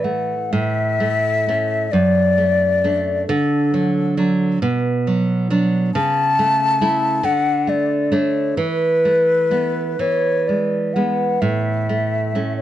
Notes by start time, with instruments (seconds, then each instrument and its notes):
Already playing: nylon-string guitar A2 E3
0.04 nylon-string guitar A3, flute F#5
0.52 nylon-string guitar A2, flute E5
1.00 nylon-string guitar A3
1.48 nylon-string guitar A3 C#4
1.92 nylon-string guitar F#2, flute D5
2.38 nylon-string guitar A3
2.84 nylon-string guitar A3 D4
3.27 nylon-string guitar D3, flute A4
3.74 nylon-string guitar F#3
4.17 nylon-string guitar F#3 D4
4.62 nylon-string guitar B2
5.07 nylon-string guitar F#3
5.50 nylon-string guitar F#3 D4
5.94 nylon-string guitar C#3, flute A5
6.39 nylon-string guitar A3
6.81 nylon-string guitar A3 E4
7.23 nylon-string guitar D3, flute F#5
7.67 nylon-string guitar A3, flute D5
8.12 nylon-string guitar A3 D4, flute C#5
8.57 nylon-string guitar E3, flute B4
9.05 nylon-string guitar A3
9.51 nylon-string guitar A3 B3
9.99 nylon-string guitar E3, flute C#5
10.47 nylon-string guitar G#3, flute D5
10.94 nylon-string guitar G#3 B3, flute F#5
11.41 nylon-string guitar A2, flute E5
11.89 nylon-string guitar A3
12.35 nylon-string guitar A3 C#4
12.57 flute C#5